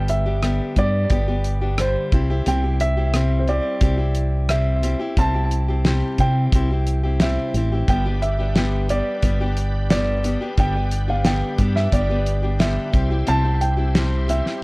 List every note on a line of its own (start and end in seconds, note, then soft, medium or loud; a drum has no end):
0.00 0.59 G1 medium
0.00 0.25 G2 medium
0.00 0.26 D3 medium
0.00 0.26 G3 medium
0.00 0.26 B3 medium
0.00 0.25 D4 medium
0.00 0.24 G4 medium
0.08 0.79 E5 medium
0.08 closed hi-hat medium
0.26 0.41 G3 soft
0.26 0.42 B3 soft
0.26 0.42 D4 soft
0.26 0.42 G4 soft
0.42 0.76 G2 medium
0.42 0.76 D3 medium
0.42 0.75 G3 medium
0.42 0.76 B3 medium
0.42 0.76 D4 medium
0.42 0.77 G4 medium
0.42 cross-stick medium
0.42 closed hi-hat medium
0.76 1.05 G2 medium
0.76 1.09 G3 medium
0.76 1.10 B3 medium
0.76 1.10 D4 medium
0.76 1.11 G4 medium
0.76 1.82 D5 loud
0.76 kick medium
0.76 closed hi-hat medium
1.10 1.95 G1 medium
1.10 1.27 G3 soft
1.10 1.28 B3 medium
1.10 1.27 D4 medium
1.10 1.26 G4 medium
1.10 kick loud
1.10 closed hi-hat medium
1.28 1.62 G3 soft
1.28 1.61 B3 soft
1.28 1.61 D4 soft
1.28 1.60 G4 soft
1.44 closed hi-hat medium
1.61 1.78 G3 soft
1.61 1.79 B3 soft
1.61 1.78 D4 soft
1.61 1.78 G4 soft
1.78 2.12 G2 medium
1.78 2.12 D3 medium
1.78 2.11 G3 medium
1.78 2.13 D4 medium
1.78 2.13 G4 medium
1.78 2.43 C5 medium
1.78 cross-stick loud
1.78 closed hi-hat medium
2.12 2.40 C2 medium
2.12 2.29 G3 medium
2.12 2.29 C4 medium
2.12 2.29 E4 medium
2.12 2.29 G4 medium
2.12 kick medium
2.12 closed hi-hat medium
2.30 2.46 C4 soft
2.30 2.46 E4 soft
2.30 2.46 G4 medium
2.46 3.59 C2 medium
2.46 2.63 C3 medium
2.46 2.63 G3 medium
2.46 2.64 C4 medium
2.46 2.64 E4 medium
2.46 2.63 G4 medium
2.46 2.82 G5 medium
2.46 closed hi-hat medium
2.64 2.98 C4 soft
2.64 2.97 E4 soft
2.64 2.96 G4 soft
2.80 3.43 E5 loud
2.80 closed hi-hat medium
2.97 3.13 C4 soft
2.97 3.14 E4 soft
2.97 3.14 G4 soft
3.14 3.48 C3 medium
3.14 3.47 G3 medium
3.14 3.47 C4 medium
3.14 3.48 E4 medium
3.14 3.48 G4 medium
3.14 cross-stick loud
3.14 closed hi-hat medium
3.39 3.47 C5 medium
3.48 3.80 G3 medium
3.48 3.80 C4 medium
3.48 3.81 E4 medium
3.48 3.81 G4 medium
3.48 4.53 D5 medium
3.48 closed hi-hat medium
3.81 4.94 C2 medium
3.81 3.98 G3 medium
3.81 3.99 C4 medium
3.81 3.97 E4 medium
3.81 3.96 G4 medium
3.81 kick loud
3.81 closed hi-hat medium
3.98 4.49 C4 soft
3.98 4.49 E4 soft
3.98 4.49 G4 soft
4.15 closed hi-hat medium
4.49 4.83 C3 medium
4.49 4.81 G3 medium
4.49 4.82 C4 medium
4.49 4.83 E4 medium
4.49 4.83 G4 medium
4.49 5.20 E5 medium
4.49 cross-stick loud
4.49 closed hi-hat medium
4.83 5.00 G3 medium
4.83 5.00 C4 medium
4.83 4.99 E4 medium
4.83 4.98 G4 medium
4.83 closed hi-hat medium
4.99 5.17 C4 soft
4.99 5.17 E4 soft
4.99 5.17 G4 soft
5.17 6.01 C2 medium
5.17 5.34 C3 medium
5.17 5.34 G3 medium
5.17 5.34 C4 medium
5.17 5.34 E4 medium
5.17 5.33 G4 medium
5.17 6.23 A5 loud
5.17 kick medium
5.17 closed hi-hat medium
5.34 5.69 C4 soft
5.34 5.68 E4 soft
5.34 5.67 G4 soft
5.51 closed hi-hat soft
5.68 5.85 C4 soft
5.68 5.85 E4 soft
5.68 5.85 G4 soft
5.85 6.19 C3 medium
5.85 6.18 G3 medium
5.85 6.19 C4 medium
5.85 6.19 E4 medium
5.85 6.19 G4 medium
5.85 snare medium
5.85 closed hi-hat medium
6.18 6.47 C3 medium
6.18 6.53 G3 soft
6.18 6.53 C4 medium
6.18 6.53 E4 medium
6.18 6.54 G4 medium
6.18 7.24 G5 medium
6.18 kick medium
6.18 closed hi-hat medium
6.53 7.37 C2 medium
6.53 6.70 G3 medium
6.53 6.70 C4 medium
6.53 6.71 E4 medium
6.53 6.69 G4 medium
6.53 kick loud
6.53 closed hi-hat medium
6.71 7.04 C4 soft
6.71 7.03 E4 soft
6.71 7.02 G4 soft
6.87 closed hi-hat medium
7.03 7.21 C4 soft
7.03 7.21 E4 soft
7.03 7.20 G4 soft
7.20 7.54 C3 medium
7.20 7.54 G3 medium
7.20 7.54 C4 medium
7.20 7.55 E4 medium
7.20 7.55 G4 medium
7.20 7.91 E5 medium
7.20 snare loud
7.20 closed hi-hat medium
7.54 7.82 A1 medium
7.54 7.71 G3 soft
7.54 7.72 C4 soft
7.54 7.72 E4 medium
7.54 7.71 G4 medium
7.54 closed hi-hat medium
7.72 7.89 C4 soft
7.72 7.89 E4 soft
7.72 7.88 G4 soft
7.87 9.00 G1 medium
7.87 8.05 G2 medium
7.87 8.05 D3 medium
7.87 8.05 G3 medium
7.87 8.05 B3 medium
7.87 10.55 D4 medium
7.87 8.05 D4 medium
7.87 10.55 G4 medium
7.87 8.04 G4 medium
7.87 10.55 B4 medium
7.87 8.23 G5 medium
7.87 kick loud
7.87 closed hi-hat medium
8.05 8.40 G3 soft
8.05 8.38 B3 soft
8.05 8.38 D4 soft
8.05 8.37 G4 soft
8.22 8.91 E5 medium
8.22 closed hi-hat soft
8.39 8.55 G3 soft
8.39 8.56 B3 soft
8.39 8.56 D4 soft
8.39 8.55 G4 soft
8.55 8.89 G2 medium
8.55 8.89 D3 medium
8.55 8.88 G3 medium
8.55 8.88 B3 medium
8.55 8.90 D4 medium
8.55 8.89 G4 medium
8.55 snare medium
8.55 closed hi-hat medium
8.89 9.21 G3 medium
8.89 9.22 B3 soft
8.89 9.23 D4 medium
8.89 9.23 G4 medium
8.89 9.90 D5 medium
8.89 closed hi-hat medium
9.22 10.35 G1 medium
9.22 9.40 G3 medium
9.22 9.40 B3 medium
9.22 9.40 D4 medium
9.22 9.39 G4 medium
9.22 kick medium
9.22 closed hi-hat medium
9.40 9.90 G3 soft
9.40 9.90 B3 soft
9.40 9.90 D4 soft
9.40 9.91 G4 soft
9.57 closed hi-hat medium
9.90 10.24 G2 medium
9.90 10.24 D3 medium
9.90 10.22 G3 medium
9.90 10.23 B3 medium
9.90 10.23 D4 medium
9.90 10.24 G4 medium
9.90 10.60 D5 medium
9.90 snare loud
9.90 closed hi-hat medium
10.23 10.41 G3 medium
10.23 10.41 B3 medium
10.23 10.40 D4 medium
10.23 10.39 G4 medium
10.23 closed hi-hat medium
10.40 10.57 G3 soft
10.40 10.57 B3 soft
10.40 10.57 D4 soft
10.40 10.58 G4 soft
10.57 11.42 G1 medium
10.57 10.75 G2 medium
10.57 10.75 D3 medium
10.57 10.75 G3 medium
10.57 10.75 B3 medium
10.57 12.92 D4 medium
10.57 10.74 D4 medium
10.57 12.92 G4 medium
10.57 10.73 G4 medium
10.57 12.92 B4 medium
10.57 11.06 G5 medium
10.57 kick loud
10.57 closed hi-hat medium
10.75 11.09 G3 soft
10.75 11.08 B3 soft
10.75 11.07 D4 soft
10.75 11.07 G4 soft
10.91 closed hi-hat medium
11.08 11.24 G3 soft
11.08 11.24 B3 soft
11.08 11.25 D4 soft
11.08 11.25 G4 soft
11.08 11.27 F5 medium
11.25 11.59 G2 medium
11.25 11.59 D3 medium
11.25 11.58 G3 medium
11.25 11.58 B3 medium
11.25 11.59 D4 medium
11.25 11.59 G4 medium
11.25 11.78 G5 medium
11.25 snare medium
11.25 closed hi-hat medium
11.58 11.87 G2 medium
11.58 11.90 G3 medium
11.58 11.91 B3 medium
11.58 11.92 D4 medium
11.58 11.92 G4 medium
11.58 kick medium
11.58 closed hi-hat medium
11.76 11.93 E5 medium
11.76 snare soft
11.92 12.77 G1 medium
11.92 12.09 G3 medium
11.92 12.09 B3 medium
11.92 12.09 D4 medium
11.92 12.08 G4 medium
11.92 12.63 D5 medium
11.92 kick medium
11.92 closed hi-hat medium
12.09 12.43 G3 soft
12.09 12.43 B3 soft
12.09 12.42 D4 soft
12.09 12.41 G4 soft
12.26 closed hi-hat medium
12.43 12.58 G3 soft
12.43 12.59 B3 soft
12.43 12.59 D4 soft
12.43 12.59 G4 soft
12.59 12.93 G2 medium
12.59 12.94 D3 medium
12.59 12.91 G3 medium
12.59 12.93 B3 medium
12.59 12.93 D4 medium
12.59 12.93 G4 medium
12.59 13.30 E5 medium
12.59 snare loud
12.59 closed hi-hat medium
12.92 13.22 C2 medium
12.92 13.10 G3 medium
12.92 13.11 C4 medium
12.92 14.63 E4 medium
12.92 13.10 E4 medium
12.92 14.63 G4 medium
12.92 13.09 G4 medium
12.92 14.63 C5 medium
12.92 kick medium
12.92 closed hi-hat soft
13.10 13.26 C4 soft
13.10 13.26 E4 soft
13.10 13.27 G4 soft
13.27 14.40 C2 medium
13.27 13.44 C3 medium
13.27 13.44 G3 medium
13.27 13.44 C4 medium
13.27 13.44 E4 medium
13.27 13.43 G4 medium
13.27 13.63 A5 loud
13.27 closed hi-hat medium
13.44 13.78 C4 soft
13.44 13.77 E4 soft
13.44 13.76 G4 soft
13.61 14.31 G5 medium
13.61 closed hi-hat medium
13.77 13.94 C4 soft
13.77 13.95 E4 soft
13.77 13.95 G4 soft
13.95 14.29 C3 medium
13.95 14.27 G3 medium
13.95 14.28 C4 medium
13.95 14.28 E4 medium
13.95 14.29 G4 medium
13.95 snare medium
13.95 closed hi-hat medium
14.28 14.61 G3 medium
14.28 14.62 C4 medium
14.28 14.62 E4 medium
14.28 14.63 G4 medium
14.28 14.63 E5 medium
14.28 closed hi-hat medium
14.46 snare soft